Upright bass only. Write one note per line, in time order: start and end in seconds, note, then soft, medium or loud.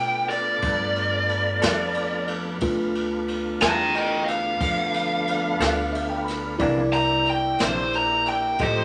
0.00 0.60 B2 medium
0.62 1.59 G2 medium
1.63 2.59 F2 loud
2.62 3.59 D2 medium
3.62 4.58 E2 loud
4.60 5.57 F2 medium
5.59 6.57 D2 loud
6.60 7.57 C2 medium
7.59 8.57 A#1 medium
8.60 8.85 A1 loud